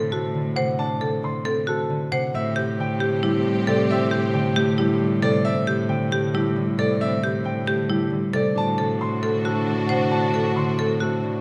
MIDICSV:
0, 0, Header, 1, 7, 480
1, 0, Start_track
1, 0, Tempo, 444444
1, 851, Time_signature, 7, 3, 24, 8
1, 12322, End_track
2, 0, Start_track
2, 0, Title_t, "Grand piano"
2, 0, Program_c, 0, 0
2, 124, Note_on_c, 0, 69, 80
2, 440, Note_off_c, 0, 69, 0
2, 602, Note_on_c, 0, 78, 102
2, 851, Note_on_c, 0, 81, 101
2, 920, Note_off_c, 0, 78, 0
2, 1163, Note_off_c, 0, 81, 0
2, 1340, Note_on_c, 0, 84, 83
2, 1646, Note_off_c, 0, 84, 0
2, 1818, Note_on_c, 0, 69, 88
2, 2125, Note_off_c, 0, 69, 0
2, 2286, Note_on_c, 0, 78, 103
2, 2536, Note_on_c, 0, 76, 111
2, 2601, Note_off_c, 0, 78, 0
2, 2844, Note_off_c, 0, 76, 0
2, 3026, Note_on_c, 0, 79, 91
2, 3328, Note_off_c, 0, 79, 0
2, 3490, Note_on_c, 0, 67, 90
2, 3803, Note_off_c, 0, 67, 0
2, 3980, Note_on_c, 0, 74, 105
2, 4217, Note_on_c, 0, 76, 117
2, 4286, Note_off_c, 0, 74, 0
2, 4525, Note_off_c, 0, 76, 0
2, 4683, Note_on_c, 0, 79, 93
2, 5000, Note_off_c, 0, 79, 0
2, 5167, Note_on_c, 0, 67, 96
2, 5482, Note_off_c, 0, 67, 0
2, 5646, Note_on_c, 0, 74, 121
2, 5883, Note_on_c, 0, 76, 120
2, 5961, Note_off_c, 0, 74, 0
2, 6200, Note_off_c, 0, 76, 0
2, 6360, Note_on_c, 0, 79, 91
2, 6679, Note_off_c, 0, 79, 0
2, 6845, Note_on_c, 0, 67, 97
2, 7161, Note_off_c, 0, 67, 0
2, 7334, Note_on_c, 0, 74, 111
2, 7571, Note_on_c, 0, 76, 119
2, 7644, Note_off_c, 0, 74, 0
2, 7883, Note_off_c, 0, 76, 0
2, 8048, Note_on_c, 0, 79, 89
2, 8362, Note_off_c, 0, 79, 0
2, 8530, Note_on_c, 0, 67, 86
2, 8843, Note_off_c, 0, 67, 0
2, 9021, Note_on_c, 0, 74, 106
2, 9262, Note_on_c, 0, 81, 117
2, 9326, Note_off_c, 0, 74, 0
2, 9567, Note_off_c, 0, 81, 0
2, 9730, Note_on_c, 0, 84, 86
2, 10043, Note_off_c, 0, 84, 0
2, 10202, Note_on_c, 0, 69, 87
2, 10520, Note_off_c, 0, 69, 0
2, 10694, Note_on_c, 0, 78, 98
2, 10923, Note_on_c, 0, 81, 104
2, 11004, Note_off_c, 0, 78, 0
2, 11240, Note_off_c, 0, 81, 0
2, 11407, Note_on_c, 0, 84, 79
2, 11721, Note_off_c, 0, 84, 0
2, 11898, Note_on_c, 0, 69, 79
2, 12205, Note_off_c, 0, 69, 0
2, 12322, End_track
3, 0, Start_track
3, 0, Title_t, "Marimba"
3, 0, Program_c, 1, 12
3, 0, Note_on_c, 1, 69, 103
3, 131, Note_on_c, 1, 66, 78
3, 203, Note_off_c, 1, 69, 0
3, 443, Note_off_c, 1, 66, 0
3, 610, Note_on_c, 1, 72, 98
3, 922, Note_off_c, 1, 72, 0
3, 1092, Note_on_c, 1, 69, 83
3, 1403, Note_off_c, 1, 69, 0
3, 1569, Note_on_c, 1, 69, 105
3, 1805, Note_on_c, 1, 66, 82
3, 1882, Note_off_c, 1, 69, 0
3, 2121, Note_off_c, 1, 66, 0
3, 2290, Note_on_c, 1, 72, 109
3, 2603, Note_off_c, 1, 72, 0
3, 2764, Note_on_c, 1, 67, 81
3, 3080, Note_off_c, 1, 67, 0
3, 3245, Note_on_c, 1, 67, 110
3, 3488, Note_on_c, 1, 64, 92
3, 3561, Note_off_c, 1, 67, 0
3, 3802, Note_off_c, 1, 64, 0
3, 3967, Note_on_c, 1, 69, 109
3, 4281, Note_off_c, 1, 69, 0
3, 4442, Note_on_c, 1, 67, 90
3, 4760, Note_off_c, 1, 67, 0
3, 4926, Note_on_c, 1, 67, 113
3, 5163, Note_on_c, 1, 64, 96
3, 5241, Note_off_c, 1, 67, 0
3, 5480, Note_off_c, 1, 64, 0
3, 5643, Note_on_c, 1, 69, 114
3, 5960, Note_off_c, 1, 69, 0
3, 6127, Note_on_c, 1, 67, 93
3, 6442, Note_off_c, 1, 67, 0
3, 6613, Note_on_c, 1, 67, 108
3, 6855, Note_on_c, 1, 64, 97
3, 6923, Note_off_c, 1, 67, 0
3, 7164, Note_off_c, 1, 64, 0
3, 7331, Note_on_c, 1, 69, 103
3, 7643, Note_off_c, 1, 69, 0
3, 7814, Note_on_c, 1, 67, 87
3, 8124, Note_off_c, 1, 67, 0
3, 8289, Note_on_c, 1, 67, 117
3, 8527, Note_on_c, 1, 64, 84
3, 8602, Note_off_c, 1, 67, 0
3, 8842, Note_off_c, 1, 64, 0
3, 9002, Note_on_c, 1, 69, 106
3, 9319, Note_off_c, 1, 69, 0
3, 9484, Note_on_c, 1, 69, 80
3, 9800, Note_off_c, 1, 69, 0
3, 9968, Note_on_c, 1, 69, 101
3, 10208, Note_on_c, 1, 66, 81
3, 10282, Note_off_c, 1, 69, 0
3, 10522, Note_off_c, 1, 66, 0
3, 10683, Note_on_c, 1, 72, 95
3, 11000, Note_off_c, 1, 72, 0
3, 11167, Note_on_c, 1, 69, 76
3, 11481, Note_off_c, 1, 69, 0
3, 11650, Note_on_c, 1, 69, 101
3, 11885, Note_on_c, 1, 66, 79
3, 11963, Note_off_c, 1, 69, 0
3, 12201, Note_off_c, 1, 66, 0
3, 12322, End_track
4, 0, Start_track
4, 0, Title_t, "French horn"
4, 0, Program_c, 2, 60
4, 2529, Note_on_c, 2, 67, 91
4, 5607, Note_off_c, 2, 67, 0
4, 9247, Note_on_c, 2, 66, 95
4, 12322, Note_off_c, 2, 66, 0
4, 12322, End_track
5, 0, Start_track
5, 0, Title_t, "String section"
5, 0, Program_c, 3, 48
5, 2540, Note_on_c, 3, 67, 85
5, 2541, Note_on_c, 3, 60, 85
5, 5612, Note_off_c, 3, 67, 0
5, 5613, Note_off_c, 3, 60, 0
5, 9240, Note_on_c, 3, 62, 87
5, 9247, Note_on_c, 3, 66, 87
5, 12322, Note_off_c, 3, 62, 0
5, 12322, Note_off_c, 3, 66, 0
5, 12322, End_track
6, 0, Start_track
6, 0, Title_t, "Harp"
6, 0, Program_c, 4, 46
6, 0, Note_on_c, 4, 48, 81
6, 0, Note_on_c, 4, 50, 78
6, 0, Note_on_c, 4, 57, 72
6, 0, Note_on_c, 4, 60, 98
6, 0, Note_on_c, 4, 62, 98
6, 120, Note_off_c, 4, 57, 0
6, 133, Note_on_c, 4, 57, 77
6, 359, Note_off_c, 4, 50, 0
6, 372, Note_on_c, 4, 50, 82
6, 596, Note_off_c, 4, 48, 0
6, 609, Note_on_c, 4, 48, 101
6, 835, Note_off_c, 4, 62, 0
6, 848, Note_on_c, 4, 62, 102
6, 1080, Note_off_c, 4, 48, 0
6, 1093, Note_on_c, 4, 48, 77
6, 1315, Note_off_c, 4, 50, 0
6, 1328, Note_on_c, 4, 50, 81
6, 1551, Note_off_c, 4, 60, 0
6, 1564, Note_on_c, 4, 60, 99
6, 1793, Note_off_c, 4, 57, 0
6, 1806, Note_on_c, 4, 57, 81
6, 2035, Note_off_c, 4, 50, 0
6, 2048, Note_on_c, 4, 50, 83
6, 2274, Note_off_c, 4, 48, 0
6, 2287, Note_on_c, 4, 48, 102
6, 2515, Note_off_c, 4, 60, 0
6, 2528, Note_on_c, 4, 60, 115
6, 2548, Note_off_c, 4, 48, 0
6, 2548, Note_off_c, 4, 50, 0
6, 2549, Note_off_c, 4, 62, 0
6, 2765, Note_on_c, 4, 48, 79
6, 3008, Note_on_c, 4, 50, 82
6, 3235, Note_off_c, 4, 57, 0
6, 3248, Note_on_c, 4, 57, 102
6, 3486, Note_on_c, 4, 55, 86
6, 3716, Note_off_c, 4, 50, 0
6, 3729, Note_on_c, 4, 50, 91
6, 3955, Note_off_c, 4, 48, 0
6, 3967, Note_on_c, 4, 48, 108
6, 4195, Note_off_c, 4, 60, 0
6, 4208, Note_on_c, 4, 60, 113
6, 4435, Note_off_c, 4, 48, 0
6, 4448, Note_on_c, 4, 48, 81
6, 4669, Note_off_c, 4, 50, 0
6, 4682, Note_on_c, 4, 50, 91
6, 4914, Note_off_c, 4, 57, 0
6, 4927, Note_on_c, 4, 57, 116
6, 5151, Note_off_c, 4, 55, 0
6, 5164, Note_on_c, 4, 55, 93
6, 5393, Note_off_c, 4, 50, 0
6, 5406, Note_on_c, 4, 50, 89
6, 5629, Note_off_c, 4, 48, 0
6, 5642, Note_on_c, 4, 48, 113
6, 5872, Note_off_c, 4, 60, 0
6, 5885, Note_on_c, 4, 60, 111
6, 6113, Note_off_c, 4, 48, 0
6, 6126, Note_on_c, 4, 48, 88
6, 6345, Note_off_c, 4, 50, 0
6, 6358, Note_on_c, 4, 50, 95
6, 6585, Note_off_c, 4, 57, 0
6, 6598, Note_on_c, 4, 57, 112
6, 6826, Note_off_c, 4, 55, 0
6, 6839, Note_on_c, 4, 55, 89
6, 7073, Note_off_c, 4, 50, 0
6, 7086, Note_on_c, 4, 50, 91
6, 7308, Note_off_c, 4, 48, 0
6, 7321, Note_on_c, 4, 48, 103
6, 7551, Note_off_c, 4, 60, 0
6, 7564, Note_on_c, 4, 60, 114
6, 7792, Note_off_c, 4, 48, 0
6, 7805, Note_on_c, 4, 48, 80
6, 8024, Note_off_c, 4, 50, 0
6, 8037, Note_on_c, 4, 50, 87
6, 8259, Note_off_c, 4, 57, 0
6, 8272, Note_on_c, 4, 57, 109
6, 8503, Note_off_c, 4, 55, 0
6, 8516, Note_on_c, 4, 55, 83
6, 8737, Note_off_c, 4, 50, 0
6, 8750, Note_on_c, 4, 50, 89
6, 8983, Note_off_c, 4, 48, 0
6, 8996, Note_on_c, 4, 48, 113
6, 9237, Note_on_c, 4, 62, 108
6, 9260, Note_off_c, 4, 50, 0
6, 9262, Note_off_c, 4, 48, 0
6, 9263, Note_off_c, 4, 55, 0
6, 9267, Note_off_c, 4, 60, 0
6, 9478, Note_on_c, 4, 48, 79
6, 9716, Note_on_c, 4, 50, 81
6, 9959, Note_on_c, 4, 60, 104
6, 10195, Note_off_c, 4, 57, 0
6, 10208, Note_on_c, 4, 57, 82
6, 10433, Note_off_c, 4, 50, 0
6, 10446, Note_on_c, 4, 50, 81
6, 10674, Note_off_c, 4, 48, 0
6, 10687, Note_on_c, 4, 48, 93
6, 10917, Note_off_c, 4, 62, 0
6, 10930, Note_on_c, 4, 62, 101
6, 11153, Note_off_c, 4, 48, 0
6, 11166, Note_on_c, 4, 48, 78
6, 11402, Note_off_c, 4, 50, 0
6, 11415, Note_on_c, 4, 50, 81
6, 11632, Note_off_c, 4, 60, 0
6, 11645, Note_on_c, 4, 60, 101
6, 11876, Note_off_c, 4, 57, 0
6, 11889, Note_on_c, 4, 57, 78
6, 12123, Note_off_c, 4, 50, 0
6, 12136, Note_on_c, 4, 50, 82
6, 12322, Note_off_c, 4, 48, 0
6, 12322, Note_off_c, 4, 50, 0
6, 12322, Note_off_c, 4, 57, 0
6, 12322, Note_off_c, 4, 60, 0
6, 12322, Note_off_c, 4, 62, 0
6, 12322, End_track
7, 0, Start_track
7, 0, Title_t, "Cello"
7, 0, Program_c, 5, 42
7, 0, Note_on_c, 5, 45, 72
7, 2391, Note_off_c, 5, 45, 0
7, 2527, Note_on_c, 5, 45, 89
7, 9110, Note_off_c, 5, 45, 0
7, 9248, Note_on_c, 5, 45, 82
7, 12322, Note_off_c, 5, 45, 0
7, 12322, End_track
0, 0, End_of_file